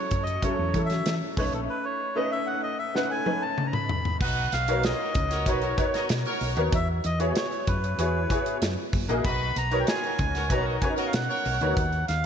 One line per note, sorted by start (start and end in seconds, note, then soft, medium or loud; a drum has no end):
0.00 0.42 F#3 medium
0.00 0.43 C#4 medium
0.00 0.44 E4 medium
0.00 0.44 A4 medium
0.00 0.24 C#5 medium
0.11 0.38 F#2 medium
0.11 kick medium
0.11 closed hi-hat medium
0.23 0.44 D#5 loud
0.27 closed hi-hat medium
0.42 0.72 F#3 medium
0.42 0.72 C#4 medium
0.42 0.72 E4 medium
0.42 0.73 A4 medium
0.42 0.82 C#5 medium
0.42 kick medium
0.42 closed hi-hat medium
0.59 0.72 E2 loud
0.74 1.01 E3 loud
0.74 1.37 F#3 medium
0.74 1.36 C#4 medium
0.74 1.38 E4 medium
0.74 1.38 A4 medium
0.74 kick medium
0.74 closed hi-hat medium
0.86 1.14 E5 loud
0.90 snare soft
0.90 closed hi-hat medium
1.06 1.19 E3 loud
1.06 snare loud
1.06 closed hi-hat loud
1.37 1.50 B1 loud
1.37 2.11 A3 medium
1.37 2.11 C#4 medium
1.37 2.11 D#4 medium
1.37 2.11 B4 medium
1.37 1.53 C#5 medium
1.37 kick loud
1.37 open hi-hat medium
1.53 1.66 A#1 medium
1.53 1.61 A4 medium
1.53 closed hi-hat soft
1.69 1.85 B4 medium
1.85 2.17 C#5 medium
2.15 2.89 A3 medium
2.15 2.89 C#4 medium
2.15 2.90 D#4 medium
2.15 2.90 B4 medium
2.15 2.31 D#5 medium
2.32 2.48 E5 loud
2.47 2.62 F#5 medium
2.63 2.78 D#5 loud
2.79 2.95 E5 medium
2.95 3.24 A3 medium
2.95 3.24 C#4 medium
2.95 3.24 D#4 medium
2.95 3.25 B4 medium
2.95 3.11 F#5 medium
2.95 snare medium
3.11 3.43 G#5 loud
3.26 4.14 A3 medium
3.26 4.14 C#4 medium
3.26 4.14 D#4 medium
3.26 4.14 B4 medium
3.26 high tom medium
3.42 3.67 A5 loud
3.58 mid tom medium
3.67 3.73 A#5 medium
3.73 4.17 B5 loud
3.73 mid tom medium
3.89 floor tom loud
4.05 floor tom medium
4.21 4.47 B1 medium
4.21 4.46 D#4 loud
4.21 4.46 F#4 loud
4.21 4.46 B4 loud
4.21 4.53 F#5 loud
4.21 kick loud
4.21 crash loud
4.52 4.92 B1 loud
4.52 4.85 F5 loud
4.52 snare soft
4.52 closed hi-hat medium
4.68 5.41 B3 medium
4.68 5.41 D#4 medium
4.68 4.81 D#4 medium
4.68 5.41 F#4 medium
4.68 4.81 F#4 medium
4.68 5.42 A#4 medium
4.68 4.81 A#4 medium
4.68 5.42 C#5 medium
4.68 closed hi-hat medium
4.83 4.97 C#4 medium
4.83 4.97 F4 medium
4.83 4.97 G#4 medium
4.83 5.49 D#5 loud
4.83 snare loud
4.83 closed hi-hat medium
5.00 5.12 D#4 medium
5.00 5.12 F#4 medium
5.00 5.12 A#4 medium
5.15 5.46 C#2 medium
5.15 kick loud
5.15 closed hi-hat medium
5.31 5.44 F#4 loud
5.31 5.44 A#4 loud
5.31 5.44 C#5 loud
5.31 snare soft
5.31 closed hi-hat medium
5.46 5.73 B1 medium
5.46 5.76 B3 medium
5.46 5.76 D#4 medium
5.46 5.60 D#4 medium
5.46 5.76 F#4 medium
5.46 5.60 F#4 medium
5.46 5.76 A#4 medium
5.46 5.60 B4 loud
5.46 6.06 C#5 medium
5.46 5.76 C#5 medium
5.46 kick medium
5.46 closed hi-hat medium
5.62 5.75 D#4 medium
5.62 5.75 F#4 medium
5.62 5.75 A#4 medium
5.62 closed hi-hat soft
5.77 6.51 B3 medium
5.77 6.51 D#4 medium
5.77 6.51 F#4 medium
5.77 6.51 A#4 medium
5.77 6.51 C#5 medium
5.77 kick loud
5.77 closed hi-hat medium
5.94 6.07 D#4 medium
5.94 6.06 F#4 medium
5.94 6.07 A#4 loud
5.94 snare soft
5.94 closed hi-hat soft
6.09 6.23 B2 medium
6.09 snare loud
6.09 closed hi-hat loud
6.26 6.51 F#4 medium
6.26 6.51 A#4 medium
6.26 6.51 C#5 loud
6.26 closed hi-hat soft
6.41 6.54 B1 medium
6.41 open hi-hat medium
6.56 6.70 D#2 loud
6.56 6.72 B3 medium
6.56 6.72 D#4 medium
6.56 6.72 F#4 medium
6.56 6.73 A#4 medium
6.56 6.73 C#5 medium
6.56 closed hi-hat soft
6.72 6.99 E2 loud
6.72 6.88 E5 loud
6.72 kick loud
6.72 closed hi-hat medium
7.04 7.31 E2 loud
7.04 7.19 D#5 loud
7.04 closed hi-hat medium
7.19 7.93 B3 medium
7.19 7.93 E4 medium
7.19 7.93 F#4 medium
7.19 7.93 G#4 medium
7.19 7.93 C#5 medium
7.19 closed hi-hat medium
7.36 7.69 C#5 loud
7.36 snare loud
7.36 closed hi-hat medium
7.52 closed hi-hat soft
7.67 7.94 F#2 loud
7.67 8.58 B4 medium
7.67 kick loud
7.67 closed hi-hat medium
7.84 closed hi-hat medium
7.98 8.25 E2 medium
7.98 8.28 B3 medium
7.98 8.28 E4 medium
7.98 8.28 F#4 medium
7.98 8.28 G#4 medium
7.98 8.28 C#5 medium
7.98 closed hi-hat medium
8.30 8.61 B3 medium
8.30 8.61 E4 medium
8.30 8.62 F#4 medium
8.30 8.62 G#4 medium
8.30 8.62 C#5 medium
8.30 kick medium
8.30 closed hi-hat medium
8.46 closed hi-hat soft
8.62 8.75 F#2 medium
8.62 snare loud
8.62 closed hi-hat loud
8.93 9.06 F#1 loud
8.93 kick loud
8.93 open hi-hat medium
9.08 9.22 A#1 medium
9.08 9.24 A#3 medium
9.08 9.24 E4 medium
9.08 9.25 F#4 medium
9.08 9.25 G#4 medium
9.08 9.25 D#5 medium
9.08 closed hi-hat soft
9.24 9.51 B1 loud
9.24 9.49 D#4 loud
9.24 9.49 F#4 loud
9.24 9.49 B4 loud
9.24 9.57 B5 loud
9.24 kick loud
9.24 closed hi-hat medium
9.56 9.83 B1 loud
9.56 9.82 A#5 loud
9.56 closed hi-hat medium
9.71 10.45 B3 medium
9.71 9.84 D#4 medium
9.71 10.45 D#4 medium
9.71 9.84 F#4 medium
9.71 10.45 F#4 medium
9.71 9.84 A#4 medium
9.71 10.45 A#4 medium
9.71 10.45 C#5 medium
9.71 closed hi-hat medium
9.80 9.87 G5 medium
9.87 10.00 C#4 medium
9.87 10.00 F4 medium
9.87 10.00 G#4 loud
9.87 10.53 G#5 loud
9.87 snare loud
9.87 closed hi-hat medium
10.03 10.16 D#4 medium
10.03 10.16 F#4 medium
10.03 10.16 A#4 medium
10.03 closed hi-hat soft
10.19 10.50 C#2 loud
10.19 kick medium
10.19 closed hi-hat medium
10.34 10.47 F#4 loud
10.34 10.47 A#4 medium
10.34 10.47 C#5 loud
10.34 snare soft
10.34 closed hi-hat medium
10.49 10.77 B1 loud
10.49 10.80 B3 medium
10.49 10.63 D#4 medium
10.49 10.80 D#4 medium
10.49 10.62 F#4 medium
10.49 10.80 F#4 medium
10.49 10.81 A#4 medium
10.49 10.62 B4 loud
10.49 10.81 C#5 medium
10.49 10.66 A#5 loud
10.49 kick medium
10.49 closed hi-hat loud
10.65 10.79 D#4 medium
10.65 10.78 F#4 medium
10.65 10.79 A#4 medium
10.82 11.56 B3 medium
10.82 10.89 C#4 medium
10.82 11.56 F#4 medium
10.82 11.56 A#4 medium
10.82 11.56 C#5 medium
10.82 10.93 G#5 medium
10.82 kick medium
10.82 closed hi-hat medium
10.89 11.59 D#4 medium
10.96 11.09 D#4 medium
10.96 11.09 F#4 medium
10.96 11.09 A#4 loud
10.96 closed hi-hat medium
11.07 11.14 F5 medium
11.13 11.27 B2 loud
11.13 11.75 F#5 loud
11.13 snare loud
11.13 closed hi-hat loud
11.29 11.54 F#4 loud
11.29 11.54 A#4 loud
11.29 11.54 C#5 loud
11.45 11.59 B1 loud
11.45 open hi-hat medium
11.61 11.74 D2 loud
11.61 11.77 B3 medium
11.61 11.77 D#4 medium
11.61 11.77 F#4 medium
11.61 11.77 A#4 medium
11.61 11.77 C#5 medium
11.61 closed hi-hat soft
11.76 12.03 D#2 loud
11.76 12.06 F#5 medium
11.76 kick loud
11.76 closed hi-hat medium
11.93 closed hi-hat soft
12.08 12.26 D#2 loud
12.08 12.26 F5 medium
12.08 snare soft
12.08 closed hi-hat medium